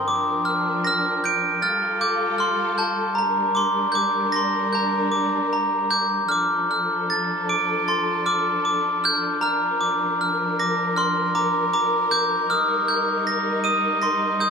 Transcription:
0.00 1.57 A#4 medium
0.08 1.61 F3 medium
0.08 1.61 D4 medium
0.08 1.62 D6 medium
0.45 0.86 F6 medium
0.84 1.25 F6 medium
0.84 1.61 A#6 medium
1.24 1.63 G6 medium
1.24 1.63 D7 medium
1.62 6.26 G3 medium
1.62 3.15 F4 medium
1.62 3.15 A4 medium
1.62 2.02 F6 medium
1.62 3.16 A6 medium
2.01 2.36 D6 medium
2.01 2.77 G6 medium
2.38 2.75 C6 medium
2.38 3.16 F6 medium
2.78 3.14 A5 medium
2.78 3.16 G6 medium
3.15 6.28 D4 medium
3.15 6.27 A#4 medium
3.15 3.17 A#5 medium
3.15 3.57 A#5 medium
3.55 3.96 C6 medium
3.55 3.94 D6 medium
3.92 4.34 D6 medium
3.92 4.71 G6 medium
4.32 4.75 C6 medium
4.32 5.91 A#6 medium
4.73 5.52 A#5 medium
4.73 5.89 G6 medium
5.12 5.90 D6 medium
5.53 6.31 A#5 medium
5.90 6.30 D6 medium
5.90 6.31 G6 medium
6.29 9.38 F3 medium
6.29 12.46 D4 medium
6.29 9.38 A4 medium
6.29 7.48 D6 medium
6.29 6.70 F6 medium
6.71 8.25 F6 medium
7.10 7.87 A6 medium
7.49 7.84 D6 medium
7.49 9.04 D7 medium
7.88 8.27 C6 medium
7.88 9.42 A6 medium
8.26 8.64 D6 medium
8.26 9.03 F6 medium
8.65 9.42 D6 medium
9.04 9.41 F6 medium
9.04 9.44 G6 medium
9.41 12.48 F3 medium
9.41 14.50 A#4 medium
9.41 10.96 A#5 medium
9.41 10.16 F6 medium
9.81 10.59 D6 medium
10.21 10.95 F6 medium
10.60 10.98 D6 medium
10.60 12.13 A#6 medium
10.96 11.37 C6 medium
10.96 12.49 F6 medium
11.35 11.73 A#5 medium
11.35 11.72 D6 medium
11.73 12.50 A#5 medium
11.73 12.09 D6 medium
12.11 12.50 D6 medium
12.11 12.51 G6 medium
12.50 14.50 G3 medium
12.50 14.50 D#4 medium
12.50 13.63 D#6 medium
12.50 13.22 F6 medium
12.88 14.39 G6 medium
13.27 14.00 A#6 medium
13.64 14.00 D#6 medium
13.64 14.50 D#7 medium
14.02 14.42 C6 medium
14.02 14.50 A#6 medium
14.40 14.50 D#6 medium
14.40 14.50 G6 medium

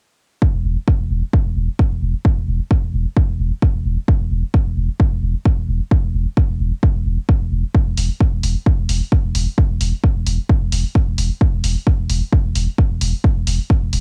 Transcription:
0.42 kick loud
0.54 0.64 E1 medium
0.65 0.76 E1 loud
0.88 kick loud
0.99 1.10 E1 medium
1.10 1.22 E1 loud
1.33 kick loud
1.45 1.56 E1 medium
1.56 1.68 E1 medium
1.79 kick loud
1.91 2.02 E1 medium
2.02 2.14 E1 loud
2.25 kick loud
2.37 2.47 E1 medium
2.48 2.60 E1 loud
2.71 kick loud
2.83 2.93 E1 medium
2.94 3.05 E1 loud
3.17 kick loud
3.29 3.39 E1 medium
3.40 3.51 E1 medium
3.62 kick loud
3.74 3.85 E1 medium
3.85 3.97 E1 medium
4.08 kick loud
4.20 4.30 E1 medium
4.31 4.43 E1 loud
4.54 kick loud
4.66 4.76 E1 medium
4.77 4.89 E1 loud
5.00 kick loud
5.12 5.22 E1 medium
5.23 5.34 E1 loud
5.46 kick loud
5.57 5.68 E1 medium
5.68 5.80 E1 medium
5.91 kick loud
6.03 6.14 E1 medium
6.14 6.26 E1 medium
6.37 kick loud
6.49 6.59 E1 medium
6.60 6.72 E1 loud
6.83 kick loud
6.95 7.05 E1 medium
7.06 7.18 E1 loud
7.29 kick loud
7.41 7.51 E1 medium
7.52 7.63 E1 loud
7.75 kick loud
7.87 7.97 E1 medium
7.97 8.09 E1 loud
7.97 open hi-hat loud
8.20 kick loud
8.32 8.43 E1 medium
8.43 8.55 E1 loud
8.43 open hi-hat loud
8.66 kick loud
8.78 8.89 E1 medium
8.89 9.01 E1 loud
8.89 open hi-hat loud
9.12 kick loud
9.24 9.34 E1 medium
9.35 9.47 E1 loud
9.35 open hi-hat loud
9.58 kick loud
9.70 9.80 E1 medium
9.81 9.92 E1 loud
9.81 open hi-hat loud
10.04 kick loud
10.15 10.26 E1 medium
10.26 10.38 E1 loud
10.26 open hi-hat loud
10.49 kick loud
10.61 10.72 E1 medium
10.72 10.84 E1 medium
10.72 open hi-hat loud
10.95 kick loud
11.07 11.17 E1 medium
11.18 11.30 E1 medium
11.18 open hi-hat loud
11.41 kick loud
11.53 11.63 E1 medium
11.64 11.76 E1 loud
11.64 open hi-hat loud
11.87 kick loud
11.99 12.09 E1 medium
12.10 12.21 E1 loud
12.10 open hi-hat loud
12.33 kick loud
12.45 12.55 E1 medium
12.55 12.67 E1 loud
12.55 open hi-hat loud
12.78 kick loud
12.90 13.01 E1 medium
13.01 13.13 E1 loud
13.01 open hi-hat loud
13.24 kick loud
13.36 13.46 E1 medium
13.47 13.59 E1 loud
13.47 open hi-hat loud
13.70 kick loud
13.82 13.92 E1 medium
13.93 14.00 E1 loud
13.93 open hi-hat loud

